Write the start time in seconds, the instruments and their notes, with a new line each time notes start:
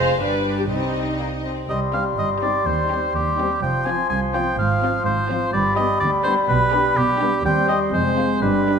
Already playing: double bass section F1, cello section F2, violin section G#3 F4 F5, viola section C5
0.20 double bass section G1, cello section G2, violin section G3 D4 D5, viola section B4
0.58 viola section G4
0.69 double bass section C2, cello section C3, violin section G3 C4 D#5, viola section D#4
1.18 violin section A#3
1.44 violin section C4
1.69 cello section C2, double bass section C2, bassoon G3, oboe D#5, flute C6
1.93 french horn section G3 C4, viola section D#4, violin section G4 C5, oboe F5
2.18 double bass section G1, cello section G2, oboe D#5
2.42 french horn section G3 C4, viola section D#4, violin section G4 C5, oboe D5
2.66 double bass section D#2, cello section D#2, oboe C5
2.90 french horn section G3 C4, viola section D#4, violin section G4 C5
3.15 double bass section D#2, cello section D#2, oboe G4
3.39 french horn section G3 C4, viola section D#4, violin section G4 C5
3.62 double bass section F1, cello section F2, bassoon F3, oboe G5, flute C6
3.85 french horn section F3 C4, viola section C4, violin section F4 C5, oboe G#5
4.10 cello section C2, double bass section C2, oboe G#5
4.34 french horn section F3 C4, viola section C4, violin section F4 C5, oboe G5
4.58 double bass section G#1, cello section G#2, oboe F5
4.82 french horn section F3 C4, viola section C4, violin section F4 C5
5.05 double bass section G#1, cello section G#2, oboe C5
5.29 french horn section F3 C4, viola section C4, violin section F4 C5
5.53 double bass section G1, cello section G2, bassoon G3, oboe D5, flute B5
5.76 french horn section G3 B3, viola section D4, violin section G4 B4, oboe D#5
6.00 double bass section D2, cello section D2, oboe D5
6.23 french horn section G3 B3, viola section D4, violin section G4 B4, oboe C5
6.48 double bass section B1, cello section B2, oboe B4
6.72 french horn section G3 B3, viola section D4, violin section G4 B4
6.97 double bass section B1, cello section B2, oboe G4
7.20 french horn section G3 B3, viola section D4, violin section G4 B4
7.44 double bass section D#2, cello section D#2, bassoon G3, french horn section G3 C4, oboe G5, flute C6
7.68 viola section C4, violin section G4 C5, oboe D#5
7.93 double bass section F1, cello section F2, bassoon G#3, french horn section G#3 C4, oboe C5
8.17 viola section C4, violin section F4 G#4
8.42 double bass section G1, cello section G2, french horn section G3 D4, bassoon G3, oboe B4, flute D6
8.67 viola section G3, violin section D4 G4